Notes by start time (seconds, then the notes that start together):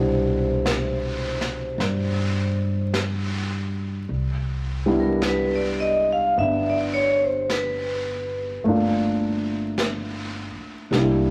Already playing: C2 B2 G3 D4 E4 C5
0.66 brush sweep, snare, hi-hat pedal
1.41 snare
1.78 G2, brush sweep, snare
2.94 brush sweep, snare, hi-hat pedal
4.08 C2, brush sweep
4.86 G3 B3 D4 E4
5.00 A#4
5.22 brush sweep, snare, hi-hat pedal
5.28 B4
5.55 D5
5.80 D#5
6.12 F5
6.35 G1 B3 E5, brush sweep
6.40 D4
6.70 D5
6.94 C#5
7.24 C5
7.50 B4, brush sweep, snare, hi-hat pedal
8.64 G1 A3 A#3 D4, brush sweep
8.69 F4
9.78 brush sweep, snare, hi-hat pedal
10.56 muted upright bass stroke
10.91 C2 G3 A#3 D4, brush sweep, snare
10.96 E4